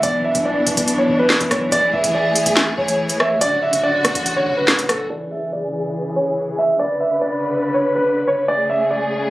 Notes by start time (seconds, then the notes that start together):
Already playing: E3
0.03 B1 B3 D4 D5, closed hi-hat
0.24 E5
0.35 B1, closed hi-hat
0.45 D5
0.67 B1, closed hi-hat
0.77 B1, closed hi-hat
0.88 closed hi-hat
0.98 C#5
1.09 B1
1.19 B4
1.30 snare, clap
1.41 B1, closed hi-hat
1.51 B1 C#5, cross-stick, closed hi-hat
1.72 A1 A3 G#4 D5, closed hi-hat
1.93 A1 E5
2.04 A1, closed hi-hat
2.14 D5 E5
2.36 G#1, closed hi-hat
2.46 A1, closed hi-hat
2.57 snare, clap
2.78 A1 C#5
2.88 closed hi-hat
3.10 G#1, closed hi-hat
3.20 E5, cross-stick
3.41 D1 C#3 D3 F#4 D5, closed hi-hat
3.62 E5
3.73 D1, closed hi-hat
3.83 D5
4.05 D1, cross-stick, closed hi-hat
4.15 A1, closed hi-hat
4.26 closed hi-hat
4.36 C#5
4.47 D1
4.57 B4
4.68 snare, clap
4.79 D1, closed hi-hat
4.89 D1 A4, cross-stick, closed hi-hat
5.10 C#3 E3 G#4 D5
5.31 E5
5.53 D5
6.16 C#5
6.58 E5
6.79 C#3 D3 B4 D5
7.00 E5
7.21 D5
7.74 C#5
7.95 B4
8.28 C#5
8.48 C#3 A3 G#4 D5
8.69 E5
8.91 D5